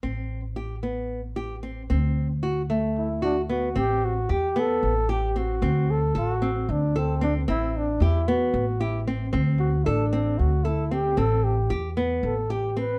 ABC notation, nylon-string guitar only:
X:1
M:7/8
L:1/8
Q:1/4=113
K:Ador
V:1 name="Nylon-string guitar"
C2 G B,2 G C | C2 F A,2 F B, | C2 G B,2 G C | C2 A C2 A C |
C2 G B,2 G C | C2 A C2 A C | C2 G B,2 G C |]